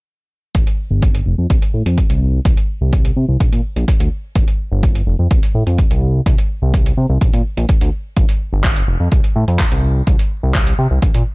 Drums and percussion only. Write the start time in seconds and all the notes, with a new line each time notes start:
0.55 kick, closed hi-hat
0.67 closed hi-hat
1.02 kick, closed hi-hat
1.15 closed hi-hat
1.50 kick, closed hi-hat
1.62 closed hi-hat
1.86 closed hi-hat
1.98 kick, closed hi-hat
2.10 closed hi-hat
2.45 kick, closed hi-hat
2.57 closed hi-hat
2.93 kick, closed hi-hat
3.05 closed hi-hat
3.40 kick, closed hi-hat
3.53 closed hi-hat
3.76 closed hi-hat
3.88 kick, closed hi-hat
4.00 closed hi-hat
4.35 kick, closed hi-hat
4.48 closed hi-hat
4.83 kick, closed hi-hat
4.95 closed hi-hat
5.31 kick, closed hi-hat
5.43 closed hi-hat
5.67 closed hi-hat
5.78 kick, closed hi-hat
5.91 closed hi-hat
6.26 kick, closed hi-hat
6.38 closed hi-hat
6.74 kick, closed hi-hat
6.86 closed hi-hat
7.21 kick, closed hi-hat
7.33 closed hi-hat
7.57 closed hi-hat
7.69 kick, closed hi-hat
7.81 closed hi-hat
8.17 kick, closed hi-hat
8.29 closed hi-hat
8.64 kick, clap, closed hi-hat
8.76 closed hi-hat
9.12 kick, closed hi-hat
9.24 closed hi-hat
9.48 closed hi-hat
9.59 kick, clap, closed hi-hat
9.72 closed hi-hat
10.07 kick, closed hi-hat
10.19 closed hi-hat
10.55 kick, clap, closed hi-hat
10.67 closed hi-hat
11.02 kick, closed hi-hat
11.14 closed hi-hat